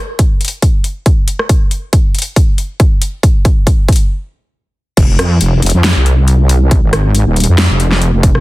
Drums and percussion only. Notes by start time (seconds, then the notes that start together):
0.19 kick, closed hi-hat
0.41 closed hi-hat
0.45 closed hi-hat
0.48 closed hi-hat
0.62 kick, closed hi-hat
0.84 closed hi-hat
1.06 kick, closed hi-hat
1.28 closed hi-hat
1.39 cross-stick
1.49 kick, closed hi-hat
1.71 closed hi-hat
1.93 kick, closed hi-hat
2.15 closed hi-hat
2.19 closed hi-hat
2.22 closed hi-hat
2.36 kick, closed hi-hat
2.58 closed hi-hat
2.80 kick, closed hi-hat
3.02 closed hi-hat
3.23 kick, closed hi-hat
3.45 kick, closed hi-hat
3.67 kick, closed hi-hat
3.88 kick, closed hi-hat
3.92 closed hi-hat
3.96 closed hi-hat
4.97 kick, closed hi-hat, crash
5.19 cross-stick, closed hi-hat
5.41 closed hi-hat
5.62 closed hi-hat
5.66 closed hi-hat
5.70 closed hi-hat
5.84 snare, closed hi-hat
6.06 closed hi-hat
6.28 closed hi-hat
6.49 closed hi-hat
6.71 kick, closed hi-hat
6.93 cross-stick, closed hi-hat
7.15 closed hi-hat
7.36 closed hi-hat
7.40 closed hi-hat
7.44 closed hi-hat
7.58 snare, closed hi-hat
7.80 closed hi-hat
7.92 snare
8.02 closed hi-hat
8.23 kick, closed hi-hat
8.35 cross-stick